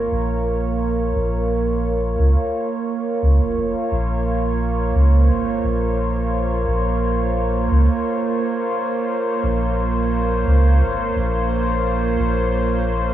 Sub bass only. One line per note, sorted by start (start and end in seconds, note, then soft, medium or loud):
0.11 1.12 A#1 medium
1.15 2.16 A#1 loud
2.19 2.35 C#2 medium
3.22 3.39 C#2 medium
3.41 3.55 F1 loud
3.57 3.73 F1 loud
3.91 4.91 A#1 loud
4.95 5.31 C#2 medium
5.29 5.60 G#1 medium
5.64 6.64 A#1 medium
6.67 7.67 A#1 loud
7.71 7.87 C#2 medium
9.43 10.43 A#1 loud
10.46 10.83 C#2 medium
10.81 11.11 G#1 medium
11.15 12.16 A#1 medium
12.19 13.14 A#1 loud